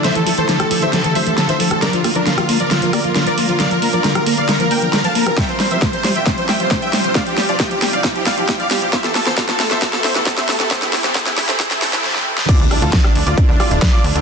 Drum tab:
CC |----------------|----------------|----------------|----------------|
HH |xxoxxxoxxxoxxxox|xxoxxxoxxxoxxxox|xxoxxxoxxxoxxxox|xxoxxxoxxxoxxxox|
SD |o---or--o---o--r|o-r-or--o-r-o---|o---or--o---o--r|o-o-o-o-o-o-o-o-|
BD |----------------|----------------|----------------|o---o---o---o---|

CC |----------------|----------------|----------------|x---------------|
HH |xxoxxxoxxxoxxxox|xxoxxxoxxxoxxxox|xxoxxxoxxxox----|x-oxx-oxx-oxx-ox|
SD |o-o-o-o-o-o-o-o-|oooooooooooooooo|oooooooooooooo-o|--r-or----r-o---|
BD |o---o---o-o-o---|o---o---o---o---|o---o---o-o-----|o---o---o---o---|